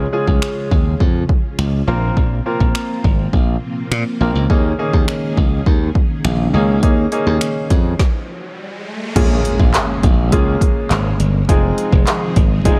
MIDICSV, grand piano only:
0, 0, Header, 1, 2, 480
1, 0, Start_track
1, 0, Key_signature, -5, "minor"
1, 0, Tempo, 582524
1, 1787, Time_signature, 4, 2, 24, 8
1, 10543, End_track
2, 0, Start_track
2, 0, Title_t, "Grand piano"
2, 0, Program_c, 0, 0
2, 104, Note_on_c, 0, 56, 86
2, 106, Note_on_c, 0, 61, 75
2, 107, Note_on_c, 0, 65, 75
2, 108, Note_on_c, 0, 68, 97
2, 816, Note_off_c, 0, 56, 0
2, 817, Note_off_c, 0, 61, 0
2, 817, Note_off_c, 0, 65, 0
2, 818, Note_off_c, 0, 68, 0
2, 1544, Note_on_c, 0, 58, 87
2, 1546, Note_on_c, 0, 60, 79
2, 1547, Note_on_c, 0, 65, 80
2, 1548, Note_on_c, 0, 70, 97
2, 1930, Note_off_c, 0, 58, 0
2, 1931, Note_off_c, 0, 60, 0
2, 1931, Note_off_c, 0, 65, 0
2, 1932, Note_off_c, 0, 70, 0
2, 2024, Note_on_c, 0, 58, 82
2, 2026, Note_on_c, 0, 60, 77
2, 2028, Note_on_c, 0, 65, 76
2, 2029, Note_on_c, 0, 70, 92
2, 2736, Note_off_c, 0, 58, 0
2, 2737, Note_off_c, 0, 60, 0
2, 2738, Note_off_c, 0, 65, 0
2, 2738, Note_off_c, 0, 70, 0
2, 3465, Note_on_c, 0, 58, 76
2, 3467, Note_on_c, 0, 60, 73
2, 3468, Note_on_c, 0, 65, 70
2, 3470, Note_on_c, 0, 70, 88
2, 3644, Note_off_c, 0, 58, 0
2, 3644, Note_off_c, 0, 60, 0
2, 3645, Note_off_c, 0, 65, 0
2, 3646, Note_off_c, 0, 70, 0
2, 3705, Note_on_c, 0, 58, 80
2, 3707, Note_on_c, 0, 61, 78
2, 3708, Note_on_c, 0, 63, 76
2, 3709, Note_on_c, 0, 68, 89
2, 3884, Note_off_c, 0, 58, 0
2, 3885, Note_off_c, 0, 61, 0
2, 3885, Note_off_c, 0, 63, 0
2, 3886, Note_off_c, 0, 68, 0
2, 3945, Note_on_c, 0, 58, 84
2, 3946, Note_on_c, 0, 61, 79
2, 3948, Note_on_c, 0, 63, 76
2, 3949, Note_on_c, 0, 68, 93
2, 4656, Note_off_c, 0, 58, 0
2, 4657, Note_off_c, 0, 61, 0
2, 4658, Note_off_c, 0, 63, 0
2, 4658, Note_off_c, 0, 68, 0
2, 5385, Note_on_c, 0, 58, 82
2, 5386, Note_on_c, 0, 61, 72
2, 5387, Note_on_c, 0, 63, 72
2, 5389, Note_on_c, 0, 68, 88
2, 5563, Note_off_c, 0, 58, 0
2, 5564, Note_off_c, 0, 61, 0
2, 5565, Note_off_c, 0, 63, 0
2, 5566, Note_off_c, 0, 68, 0
2, 5625, Note_on_c, 0, 58, 83
2, 5626, Note_on_c, 0, 61, 78
2, 5628, Note_on_c, 0, 63, 78
2, 5629, Note_on_c, 0, 68, 95
2, 5804, Note_off_c, 0, 58, 0
2, 5804, Note_off_c, 0, 61, 0
2, 5805, Note_off_c, 0, 63, 0
2, 5806, Note_off_c, 0, 68, 0
2, 5865, Note_on_c, 0, 58, 87
2, 5867, Note_on_c, 0, 61, 83
2, 5868, Note_on_c, 0, 63, 77
2, 5870, Note_on_c, 0, 68, 92
2, 6577, Note_off_c, 0, 58, 0
2, 6577, Note_off_c, 0, 61, 0
2, 6578, Note_off_c, 0, 63, 0
2, 6579, Note_off_c, 0, 68, 0
2, 7545, Note_on_c, 0, 56, 85
2, 7546, Note_on_c, 0, 58, 78
2, 7547, Note_on_c, 0, 61, 75
2, 7548, Note_on_c, 0, 65, 77
2, 7550, Note_on_c, 0, 68, 94
2, 8256, Note_off_c, 0, 56, 0
2, 8257, Note_off_c, 0, 58, 0
2, 8258, Note_off_c, 0, 61, 0
2, 8258, Note_off_c, 0, 65, 0
2, 8259, Note_off_c, 0, 68, 0
2, 8505, Note_on_c, 0, 56, 90
2, 8506, Note_on_c, 0, 58, 83
2, 8507, Note_on_c, 0, 61, 82
2, 8509, Note_on_c, 0, 65, 83
2, 8509, Note_on_c, 0, 68, 97
2, 9216, Note_off_c, 0, 56, 0
2, 9217, Note_off_c, 0, 58, 0
2, 9218, Note_off_c, 0, 61, 0
2, 9218, Note_off_c, 0, 65, 0
2, 9219, Note_off_c, 0, 68, 0
2, 9465, Note_on_c, 0, 56, 86
2, 9465, Note_on_c, 0, 60, 80
2, 9466, Note_on_c, 0, 63, 80
2, 9467, Note_on_c, 0, 65, 77
2, 9469, Note_on_c, 0, 68, 96
2, 10176, Note_off_c, 0, 56, 0
2, 10176, Note_off_c, 0, 60, 0
2, 10177, Note_off_c, 0, 63, 0
2, 10178, Note_off_c, 0, 65, 0
2, 10178, Note_off_c, 0, 68, 0
2, 10425, Note_on_c, 0, 56, 90
2, 10426, Note_on_c, 0, 60, 81
2, 10428, Note_on_c, 0, 63, 84
2, 10428, Note_on_c, 0, 65, 83
2, 10429, Note_on_c, 0, 68, 99
2, 10543, Note_off_c, 0, 56, 0
2, 10543, Note_off_c, 0, 60, 0
2, 10543, Note_off_c, 0, 63, 0
2, 10543, Note_off_c, 0, 65, 0
2, 10543, Note_off_c, 0, 68, 0
2, 10543, End_track
0, 0, End_of_file